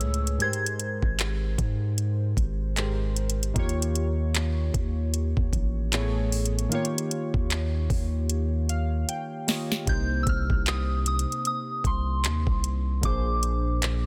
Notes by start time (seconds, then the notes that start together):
Already playing: A2 A3 G#4 B4 C#5 E6
0.01 C#2, closed hi-hat
0.14 closed hi-hat
0.27 closed hi-hat
0.38 G#2 G#3 G4, closed hi-hat
0.42 A#4 C5 G#6
0.53 closed hi-hat
0.66 closed hi-hat
0.80 closed hi-hat
1.02 G#1, kick
1.19 clap, closed hi-hat
1.58 G#2, kick, closed hi-hat
1.98 closed hi-hat
2.37 G#1, kick, closed hi-hat
2.76 G#2 G#3 G4 A#4 C5, clap, closed hi-hat
3.16 closed hi-hat
3.30 closed hi-hat
3.43 closed hi-hat
3.54 D#2 D#3 A#3 F4 G4, kick, closed hi-hat
3.59 C#5
3.69 closed hi-hat
3.82 closed hi-hat
3.95 closed hi-hat
4.35 clap, closed hi-hat
4.74 D#2, kick, closed hi-hat
5.14 closed hi-hat
5.37 D#2, kick
5.53 A1, kick, closed hi-hat
5.92 A2 A3 B3 G#4 C#5, clap, closed hi-hat
6.32 closed hi-hat, open hi-hat
6.46 closed hi-hat
6.59 closed hi-hat
6.69 D#3 A#3 F4, closed hi-hat
6.73 G4 C#5
6.85 closed hi-hat
6.98 closed hi-hat
7.11 closed hi-hat
7.34 D#2, kick
7.50 clap, closed hi-hat
7.90 D#2, kick, open hi-hat
8.30 closed hi-hat
8.69 F5, closed hi-hat
9.09 G5, closed hi-hat
9.47 D#3 A#3 F4 G4 C#5 D#5, snare, open hi-hat
9.72 snare
9.85 C2 C3 A#3 D#4, kick, closed hi-hat
9.89 G4 C5 G6
10.23 C2 E6, kick, closed hi-hat
10.29 F6
10.50 C2, kick
10.66 D#6, clap, closed hi-hat
11.06 D#6, closed hi-hat
11.19 closed hi-hat
11.32 closed hi-hat
11.45 D#6, closed hi-hat
11.84 C2 C6, kick, closed hi-hat
12.24 D#2, clap, closed hi-hat
12.47 C2, kick
12.64 closed hi-hat
13.01 A#1 A#2 A#3 D4 D6, kick, closed hi-hat
13.05 G#4 C5
13.43 closed hi-hat
13.82 clap, closed hi-hat